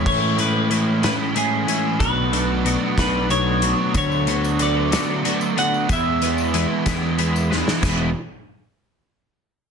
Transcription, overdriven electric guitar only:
\new Staff \with { instrumentName = "Overdriven electric guitar" } { \time 6/8 \key e \mixolydian \tempo 4. = 62 <a, e a cis' e'>8 <a, e a cis' e'>8 <a, e a cis' e'>8 <a, e a cis' e'>8 <a, e a cis' e'>8 <a, e a cis' e'>8 | <b, fis b d'>8 <b, fis b d'>8 <b, fis b d'>8 <b, fis b d'>8 <b, fis b d'>8 <b, fis b d'>8 | <d fis a d'>8 <d fis a d'>8 <d fis a d'>8 <d fis a d'>8 <d fis a d'>8 <d fis a d'>8 | <e gis b e'>8 <e gis b e'>8 <e gis b e'>8 <e gis b e'>8 <e gis b e'>8 <e gis b e'>8 |
<e gis b e'>8 r2 r8 | }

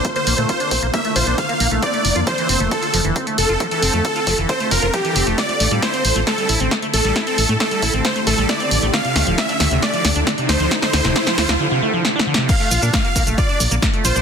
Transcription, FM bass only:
\new Staff \with { instrumentName = "FM bass" } { \clef bass \time 4/4 \key bes \lydian \tempo 4 = 135 r8 bes,,16 bes,16 r8 bes,,16 bes,,16 r8 bes,,16 bes,,16 r8 bes,,16 bes,,16 | r8 f,,16 f,16 r8 f,,16 f,,16 r8 f,,16 f,,16 r8 f,,16 f,,16 | r8 f,,16 f,16 r8 f,,16 f,,16 r8 f,,16 f,,16 r8 f,,16 f,,16 | r8 a,,16 a,16 r8 a,,16 a,,16 r8 a,,16 a,,16 r8 a,,16 a,,16 |
r8 a,,16 a,16 r8 a,,16 a,,16 r8 a,,16 a,,16 r8 a,,16 a,,16 | r8 d,16 d,,16 r8 d,16 d,16 r8 d,16 d,16 r8 d,16 d,16 | r8 d,16 d,,16 r8 d,16 d,16 r2 | r8 bes,,16 bes,16 r8 bes,,16 bes,,16 r8 bes,,16 bes,,16 r8 bes,,16 bes,,16 | }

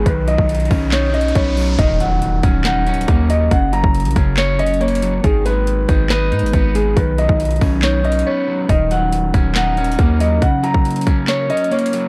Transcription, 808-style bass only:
\new Staff \with { instrumentName = "808-style bass" } { \clef bass \time 4/4 \key ees \minor \tempo 4 = 139 b,,8. b,,8. b,,4. b,,4 | ees,,4. ees,,4. ees,4 | ges,,8. ges,,8 bes,,16 ges,,2~ ges,,8 | aes,,4. aes,,4 aes,16 aes,,16 aes,,4 |
b,,8. b,,8. b,,4. r4 | ees,,4. ees,,4. ees,4 | r1 | }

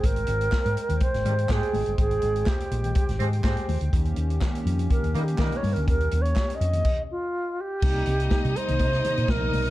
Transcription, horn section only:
\new Staff \with { instrumentName = "Horn section" } { \time 4/4 \key aes \major \tempo 4 = 123 r2 r8 <ees g c' g'>16 r16 <aes g' c'' g''>8. r16 | r2 r8 <aes c' g' c''>16 r16 <aes c' g' c''>8. r16 | r2 r8 <g bes ees' bes'>16 r16 <g bes ees' bes'>8. r16 | r1 |
r1 | }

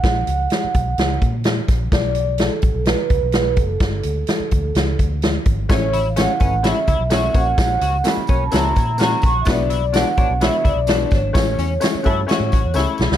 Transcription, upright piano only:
\new Staff \with { instrumentName = "Upright piano" } { \time 4/4 \key fis \phrygian \tempo 4 = 127 r1 | r1 | r1 | <a cis' e' cis''>8 r8 <a cis' e' cis''>8 <a cis' e' b'>8 <a cis' e' cis''>8 r8 <a cis' e' cis''>8 <ais cis' fis' cis''>8~ |
<ais cis' fis' cis''>8 r8 <ais cis' fis' e''>8 <ais cis' fis' cis''>8 <ais cis' fis' cis''>8 r8 <ais cis' fis' ais'>8 r8 | <b d' fis' d''>8 r8 <b d' fis' d''>8 <b d' fis' cis''>8 <b d' fis' cis''>8 r8 <b d' fis' d''>8 r8 | <a cis' e' cis''>8 r8 <a cis' e' cis''>8 <a cis' e' fis'>8 <a cis' e' cis''>8 r8 <a cis' e' cis''>8 r8 | }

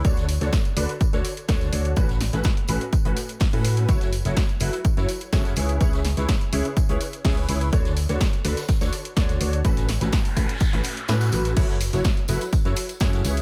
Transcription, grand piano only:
\new Staff \with { instrumentName = "Grand piano" } { \time 4/4 \key fis \minor \tempo 4 = 125 <d d' fis' a' cis''>8 r16 <d d' fis' a' cis''>16 r8 <d d' fis' a' b'>16 r8 <d d' fis' a' cis''>16 r8 <d d' fis' a' cis''>8 <d' fis' a' cis''>8 | <a, cis' fis' a' b'>8 r16 <a, cis' fis' a' b'>16 r8 <a, cis' fis' a' b'>16 r8 <a, cis' fis' a' b'>16 r8. <a, cis' fis' a' b'>8. | <fis e' fis' a' cis''>8 r16 <fis e' fis' a' cis''>16 r8 <fis e' fis' a' b'>16 r8 <fis e' fis' a' cis''>16 r8 <cis e' fis' a' cis''>8 <cis e' gis' b' cis''>8 | <cis e' gis' b' cis''>8 r16 <cis e' gis' b' cis''>16 r8 <cis e' gis' b' cis''>16 r8 <cis e' gis' b' cis''>16 r8 <cis e' gis' b' cis''>8 <e' gis' b' cis''>8 |
<d d' fis' a' cis''>8 r16 <d d' fis' a' cis''>16 r8 <d d' fis' a' b'>16 r8 <d d' fis' a' cis''>16 r8 <d d' fis' a' cis''>8 <d' fis' a' cis''>8 | <a, cis' fis' a' b'>8 r16 <a, cis' fis' a' b'>16 r8 <a, cis' fis' a' b'>16 r8 <a, cis' fis' a' b'>16 r8 <a, cis' fis' a' b'>8 <fis cis' fis' a' b'>8 | <fis e' fis' a' cis''>8 r16 <fis e' fis' a' cis''>16 r8 <fis e' fis' a' b'>16 r8 <fis e' fis' a' cis''>16 r8 <cis e' fis' a' cis''>8 <cis e' gis' b' cis''>8 | }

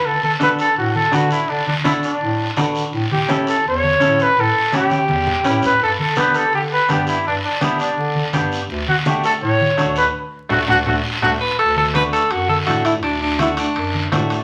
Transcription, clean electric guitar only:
\new Staff \with { instrumentName = "Clean electric guitar" } { \time 4/4 \key d \major \tempo 4 = 166 r4 <d' fis' a'>8 r4. <d' fis' b'>8 r8 | r4 <d' fis' a'>8 r4. <d' fis' b'>8 r8 | r4 <cis' e' a'>8 r4. <cis' e' a'>8 r8 | r4 <cis' e' g'>8 r4. <cis' e' b'>8 r8 |
r4 <b d' g'>8 r4. <b d' g'>8 r8 | r4 <b d' g'>8 r4. <b d' g'>8 r8 | r4 <a d' fis'>8 r4. <a d' fis'>8 r8 | r4 <a d' fis'>8 <a d' fis'>8 <a d' fis'>8 r8 <a d' fis'>8 r8 |
r4 <a d' fis'>8 r4. <a d' a'>8 r8 | r4 <a d' fis'>8 r4. <a d' fis'>8 r8 | }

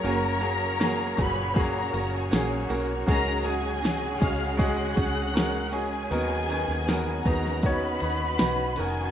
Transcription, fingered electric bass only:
\new Staff \with { instrumentName = "Fingered electric bass" } { \clef bass \time 4/4 \key fis \major \tempo 4 = 79 fis,,4. fis,,4 fis,,8 ais,,8 b,,8 | cis,4. cis,4 cis,4. | dis,8. dis,8. dis,4 dis,8 b,,8 eis,,8 | }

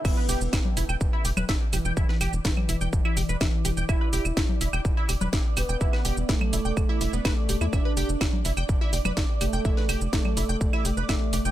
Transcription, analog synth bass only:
\new Staff \with { instrumentName = "Analog synth bass" } { \clef bass \time 4/4 \key e \phrygian \tempo 4 = 125 e,,16 r16 e,,16 e,,16 e,,16 r16 e,,16 e,,16 e,,16 r16 e,,16 e,,16 e,,16 r16 e,,16 e,,16 | e,,16 r16 e,,16 e,,16 e,,16 r16 e,,16 e,,16 e,,16 r16 e,,16 e,,16 e,,16 r16 e,,16 e,,16 | e,,16 r16 e,,16 e,,16 e,,16 r16 e,,16 e,,16 e,,16 r16 e,,16 e,,16 e,,16 r16 e,,16 e,,16 | e,,16 r16 e,,16 e,,16 e,,16 r16 e,,16 e,,16 e,,16 r16 e,,16 e,,16 e,,16 r16 e,,16 e,16 |
f,,16 r16 f,,16 f,,16 f,,16 r16 f,,16 f,,16 f,,16 r16 f,,16 f,,16 f,,16 r16 f,,16 f,,16 | f,,16 r16 f,,16 f,,16 f,,16 r16 f,,16 f,,16 f,,16 r16 f,,16 f,,16 f,,16 r16 f,,16 f,,16 | }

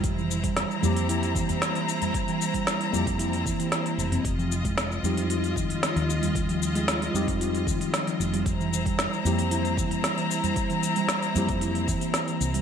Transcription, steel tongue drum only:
\new Staff \with { instrumentName = "Steel tongue drum" } { \clef bass \time 4/4 \key c \phrygian \tempo 4 = 114 r16 e8 g16 r8 g8 e'16 r16 e16 r8 e8 g16 | r16 e8 g16 r8 g8 e'16 r16 e16 e16 r16 e16 r16 c'16 | r16 f8 aes16 r8 g8 f'16 r16 ees16 r8 f8 g16 | r16 f8 aes16 r8 g8 f'16 r16 ees16 r8 f8 g16 |
r16 e8 g16 r8 g8 e'16 r16 e16 r8 e8 g16 | r16 e8 g16 r8 g8 e'16 r16 e16 r8 e8 g16 | }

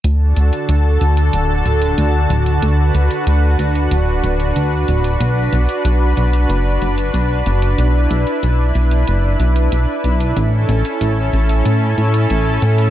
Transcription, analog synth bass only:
\new Staff \with { instrumentName = "Analog synth bass" } { \clef bass \time 4/4 \key d \major \tempo 4 = 93 d,8 d,8 d,8 d,8 d,,8 d,,8 d,8 d,,8 | d,8 d,8 d,8 d,8 d,,8 d,,8 d,8 d,,8 | b,,8 b,,8 b,,8 b,,8 fis,,8 fis,,8 b,,8 fis,,8 | b,,8 b,,8 b,,8 b,,8 fis,,8 b,,8 b,,8 b,,8 |
a,,8 a,,8 a,,8 a,,8 a,8 a,8 a,,8 a,8 | }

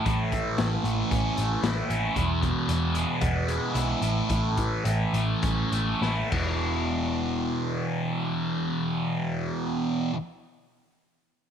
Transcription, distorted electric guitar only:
\new Staff \with { instrumentName = "Distorted electric guitar" } { \clef bass \time 4/4 \key e \major \tempo 4 = 104 a,8 e8 e8 a8 cis'8 a8 e'8 cis'8 | e,8 b,8 e8 gis8 b8 gis8 e'8 a,8 | a,8 e8 e8 a8 cis'8 a8 e'8 <e, b, e>8~ | <e, b, e>1~ |
<e, b, e>1 | }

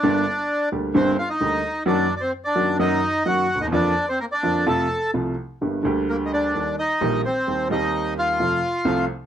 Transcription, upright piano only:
\new Staff \with { instrumentName = "Upright piano" } { \clef bass \time 4/4 \key f \mixolydian \tempo 4 = 130 <g,, g, d g bes g'>8 r4 <d, d g bes g'>8 <g,, g, d g bes g'>8 r8 <d, d g bes g'>8 r8 | <ges, ees ges bes ges'>8 r4 <ges, ees ges bes ges'>8 <ges, ees ges bes ges'>8 r8 <ges, ees ges bes ges'>8 r32 d,32 ees,32 e,32 | <f, d f bes f'>8 r4 <f, d f bes f'>8 <f, c f a f'>8 r8 <c, c f a f'>8 r8 | \key g \minor <g,, g, d g bes g'>8 <d, d g bes g'>4. <ees, ees g bes g'>8 r8 <bes,, bes, ees g bes g'>8 r8 |
<ees, ees g c' g'>8 <ees, ees g c' g'>4. <f, c f a f'>8 r8 <c, c f a f'>8 r8 | }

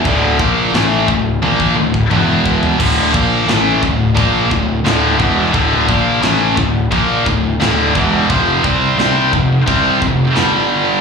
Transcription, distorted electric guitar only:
\new Staff \with { instrumentName = "Distorted electric guitar" } { \clef bass \time 4/4 \key d \minor \tempo 4 = 87 <d, a, d>8 <bes, f bes>8 <a, e a>8 <d, a,>8 <bes, f bes>8 <d, a,>8 <e, b, e>4 | <d, a, d>8 <bes, f bes>8 <a, e a>8 <d, a,>8 <bes, f bes>8 <d, a,>8 <d, a, d>8 <e, b, e>8 | <d, a, d>8 <bes, f bes>8 <a, e a>8 <d, a,>8 <bes, f bes>8 <d, a,>8 <d, a, d>8 <e, b, e>8 | <f, c f>8 <c g c'>8 <c g c'>8 <f, c>8 <c g c'>8 <f, c>8 <g, d g>4 | }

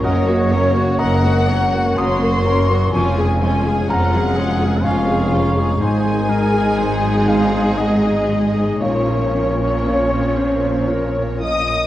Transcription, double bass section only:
\new Staff \with { instrumentName = "Double bass section" } { \clef bass \time 3/4 \key des \major \tempo 4 = 62 ges,,4 ges,,4 ges,,4 | f,,4 f,,4 f,,4 | aes,,2. | bes,,2. | }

